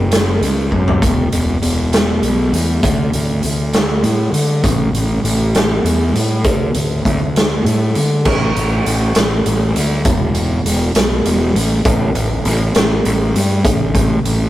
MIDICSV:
0, 0, Header, 1, 3, 480
1, 0, Start_track
1, 0, Tempo, 603622
1, 809, Time_signature, 6, 3, 24, 8
1, 5126, Tempo, 599401
1, 11570, End_track
2, 0, Start_track
2, 0, Title_t, "Fingered electric bass"
2, 0, Program_c, 0, 33
2, 0, Note_on_c, 0, 30, 73
2, 303, Note_off_c, 0, 30, 0
2, 328, Note_on_c, 0, 37, 82
2, 555, Note_off_c, 0, 37, 0
2, 573, Note_on_c, 0, 42, 74
2, 798, Note_off_c, 0, 42, 0
2, 815, Note_on_c, 0, 28, 93
2, 1039, Note_off_c, 0, 28, 0
2, 1048, Note_on_c, 0, 28, 79
2, 1276, Note_off_c, 0, 28, 0
2, 1283, Note_on_c, 0, 28, 74
2, 1740, Note_off_c, 0, 28, 0
2, 1766, Note_on_c, 0, 35, 80
2, 1995, Note_off_c, 0, 35, 0
2, 2003, Note_on_c, 0, 40, 80
2, 2234, Note_off_c, 0, 40, 0
2, 2257, Note_on_c, 0, 38, 88
2, 2481, Note_off_c, 0, 38, 0
2, 2492, Note_on_c, 0, 38, 81
2, 2718, Note_off_c, 0, 38, 0
2, 2736, Note_on_c, 0, 38, 78
2, 3187, Note_off_c, 0, 38, 0
2, 3202, Note_on_c, 0, 45, 89
2, 3433, Note_off_c, 0, 45, 0
2, 3440, Note_on_c, 0, 50, 73
2, 3671, Note_off_c, 0, 50, 0
2, 3688, Note_on_c, 0, 33, 94
2, 3915, Note_off_c, 0, 33, 0
2, 3920, Note_on_c, 0, 33, 79
2, 4150, Note_off_c, 0, 33, 0
2, 4159, Note_on_c, 0, 33, 82
2, 4615, Note_off_c, 0, 33, 0
2, 4644, Note_on_c, 0, 40, 78
2, 4871, Note_off_c, 0, 40, 0
2, 4881, Note_on_c, 0, 45, 78
2, 5128, Note_off_c, 0, 45, 0
2, 5128, Note_on_c, 0, 38, 97
2, 5354, Note_off_c, 0, 38, 0
2, 5367, Note_on_c, 0, 38, 78
2, 5594, Note_off_c, 0, 38, 0
2, 5611, Note_on_c, 0, 38, 73
2, 6063, Note_off_c, 0, 38, 0
2, 6086, Note_on_c, 0, 45, 86
2, 6314, Note_off_c, 0, 45, 0
2, 6339, Note_on_c, 0, 50, 78
2, 6560, Note_off_c, 0, 50, 0
2, 6579, Note_on_c, 0, 33, 93
2, 6788, Note_off_c, 0, 33, 0
2, 6813, Note_on_c, 0, 33, 76
2, 7025, Note_off_c, 0, 33, 0
2, 7054, Note_on_c, 0, 33, 79
2, 7265, Note_off_c, 0, 33, 0
2, 7301, Note_on_c, 0, 33, 84
2, 7509, Note_off_c, 0, 33, 0
2, 7537, Note_on_c, 0, 33, 88
2, 7747, Note_off_c, 0, 33, 0
2, 7784, Note_on_c, 0, 38, 87
2, 7991, Note_off_c, 0, 38, 0
2, 8015, Note_on_c, 0, 28, 89
2, 8439, Note_off_c, 0, 28, 0
2, 8495, Note_on_c, 0, 28, 85
2, 8705, Note_off_c, 0, 28, 0
2, 8735, Note_on_c, 0, 35, 89
2, 8945, Note_off_c, 0, 35, 0
2, 8977, Note_on_c, 0, 28, 89
2, 9186, Note_off_c, 0, 28, 0
2, 9206, Note_on_c, 0, 33, 84
2, 9420, Note_off_c, 0, 33, 0
2, 9455, Note_on_c, 0, 33, 98
2, 9665, Note_off_c, 0, 33, 0
2, 9689, Note_on_c, 0, 33, 90
2, 9902, Note_off_c, 0, 33, 0
2, 9934, Note_on_c, 0, 33, 90
2, 10144, Note_off_c, 0, 33, 0
2, 10176, Note_on_c, 0, 33, 85
2, 10385, Note_off_c, 0, 33, 0
2, 10418, Note_on_c, 0, 33, 90
2, 10626, Note_off_c, 0, 33, 0
2, 10652, Note_on_c, 0, 43, 81
2, 10863, Note_off_c, 0, 43, 0
2, 10894, Note_on_c, 0, 33, 99
2, 11317, Note_off_c, 0, 33, 0
2, 11368, Note_on_c, 0, 33, 88
2, 11570, Note_off_c, 0, 33, 0
2, 11570, End_track
3, 0, Start_track
3, 0, Title_t, "Drums"
3, 92, Note_on_c, 9, 42, 81
3, 101, Note_on_c, 9, 38, 99
3, 171, Note_off_c, 9, 42, 0
3, 181, Note_off_c, 9, 38, 0
3, 338, Note_on_c, 9, 42, 64
3, 418, Note_off_c, 9, 42, 0
3, 573, Note_on_c, 9, 36, 49
3, 652, Note_off_c, 9, 36, 0
3, 698, Note_on_c, 9, 43, 79
3, 778, Note_off_c, 9, 43, 0
3, 812, Note_on_c, 9, 36, 91
3, 817, Note_on_c, 9, 42, 80
3, 892, Note_off_c, 9, 36, 0
3, 896, Note_off_c, 9, 42, 0
3, 1053, Note_on_c, 9, 42, 69
3, 1132, Note_off_c, 9, 42, 0
3, 1293, Note_on_c, 9, 42, 58
3, 1372, Note_off_c, 9, 42, 0
3, 1534, Note_on_c, 9, 42, 70
3, 1543, Note_on_c, 9, 38, 101
3, 1613, Note_off_c, 9, 42, 0
3, 1623, Note_off_c, 9, 38, 0
3, 1773, Note_on_c, 9, 42, 51
3, 1852, Note_off_c, 9, 42, 0
3, 2016, Note_on_c, 9, 42, 57
3, 2096, Note_off_c, 9, 42, 0
3, 2252, Note_on_c, 9, 36, 97
3, 2255, Note_on_c, 9, 42, 73
3, 2331, Note_off_c, 9, 36, 0
3, 2334, Note_off_c, 9, 42, 0
3, 2492, Note_on_c, 9, 42, 54
3, 2571, Note_off_c, 9, 42, 0
3, 2725, Note_on_c, 9, 42, 49
3, 2805, Note_off_c, 9, 42, 0
3, 2969, Note_on_c, 9, 42, 70
3, 2979, Note_on_c, 9, 38, 100
3, 3049, Note_off_c, 9, 42, 0
3, 3058, Note_off_c, 9, 38, 0
3, 3210, Note_on_c, 9, 42, 57
3, 3290, Note_off_c, 9, 42, 0
3, 3450, Note_on_c, 9, 42, 52
3, 3530, Note_off_c, 9, 42, 0
3, 3688, Note_on_c, 9, 36, 95
3, 3690, Note_on_c, 9, 42, 79
3, 3767, Note_off_c, 9, 36, 0
3, 3769, Note_off_c, 9, 42, 0
3, 3933, Note_on_c, 9, 42, 60
3, 4013, Note_off_c, 9, 42, 0
3, 4174, Note_on_c, 9, 42, 56
3, 4253, Note_off_c, 9, 42, 0
3, 4411, Note_on_c, 9, 42, 74
3, 4420, Note_on_c, 9, 38, 101
3, 4490, Note_off_c, 9, 42, 0
3, 4500, Note_off_c, 9, 38, 0
3, 4657, Note_on_c, 9, 42, 65
3, 4736, Note_off_c, 9, 42, 0
3, 4895, Note_on_c, 9, 42, 54
3, 4974, Note_off_c, 9, 42, 0
3, 5124, Note_on_c, 9, 42, 79
3, 5126, Note_on_c, 9, 36, 100
3, 5204, Note_off_c, 9, 42, 0
3, 5206, Note_off_c, 9, 36, 0
3, 5365, Note_on_c, 9, 42, 61
3, 5445, Note_off_c, 9, 42, 0
3, 5612, Note_on_c, 9, 36, 68
3, 5617, Note_on_c, 9, 42, 51
3, 5692, Note_off_c, 9, 36, 0
3, 5697, Note_off_c, 9, 42, 0
3, 5859, Note_on_c, 9, 42, 81
3, 5869, Note_on_c, 9, 38, 95
3, 5940, Note_off_c, 9, 42, 0
3, 5949, Note_off_c, 9, 38, 0
3, 6101, Note_on_c, 9, 42, 58
3, 6181, Note_off_c, 9, 42, 0
3, 6332, Note_on_c, 9, 42, 49
3, 6412, Note_off_c, 9, 42, 0
3, 6572, Note_on_c, 9, 49, 87
3, 6576, Note_on_c, 9, 36, 95
3, 6652, Note_off_c, 9, 49, 0
3, 6656, Note_off_c, 9, 36, 0
3, 6823, Note_on_c, 9, 42, 61
3, 6903, Note_off_c, 9, 42, 0
3, 7061, Note_on_c, 9, 42, 56
3, 7141, Note_off_c, 9, 42, 0
3, 7291, Note_on_c, 9, 42, 87
3, 7300, Note_on_c, 9, 38, 92
3, 7371, Note_off_c, 9, 42, 0
3, 7381, Note_off_c, 9, 38, 0
3, 7538, Note_on_c, 9, 42, 64
3, 7618, Note_off_c, 9, 42, 0
3, 7779, Note_on_c, 9, 42, 64
3, 7859, Note_off_c, 9, 42, 0
3, 8011, Note_on_c, 9, 42, 85
3, 8013, Note_on_c, 9, 36, 105
3, 8091, Note_off_c, 9, 42, 0
3, 8093, Note_off_c, 9, 36, 0
3, 8249, Note_on_c, 9, 42, 70
3, 8329, Note_off_c, 9, 42, 0
3, 8499, Note_on_c, 9, 42, 60
3, 8579, Note_off_c, 9, 42, 0
3, 8732, Note_on_c, 9, 42, 88
3, 8742, Note_on_c, 9, 38, 98
3, 8812, Note_off_c, 9, 42, 0
3, 8822, Note_off_c, 9, 38, 0
3, 8977, Note_on_c, 9, 42, 68
3, 9057, Note_off_c, 9, 42, 0
3, 9222, Note_on_c, 9, 42, 65
3, 9302, Note_off_c, 9, 42, 0
3, 9455, Note_on_c, 9, 36, 114
3, 9461, Note_on_c, 9, 42, 80
3, 9535, Note_off_c, 9, 36, 0
3, 9542, Note_off_c, 9, 42, 0
3, 9695, Note_on_c, 9, 42, 66
3, 9775, Note_off_c, 9, 42, 0
3, 9935, Note_on_c, 9, 42, 51
3, 10015, Note_off_c, 9, 42, 0
3, 10172, Note_on_c, 9, 42, 78
3, 10181, Note_on_c, 9, 38, 103
3, 10252, Note_off_c, 9, 42, 0
3, 10261, Note_off_c, 9, 38, 0
3, 10416, Note_on_c, 9, 42, 61
3, 10497, Note_off_c, 9, 42, 0
3, 10660, Note_on_c, 9, 42, 57
3, 10740, Note_off_c, 9, 42, 0
3, 10892, Note_on_c, 9, 36, 102
3, 10893, Note_on_c, 9, 42, 74
3, 10972, Note_off_c, 9, 36, 0
3, 10974, Note_off_c, 9, 42, 0
3, 11132, Note_on_c, 9, 36, 80
3, 11136, Note_on_c, 9, 42, 68
3, 11212, Note_off_c, 9, 36, 0
3, 11216, Note_off_c, 9, 42, 0
3, 11379, Note_on_c, 9, 42, 56
3, 11459, Note_off_c, 9, 42, 0
3, 11570, End_track
0, 0, End_of_file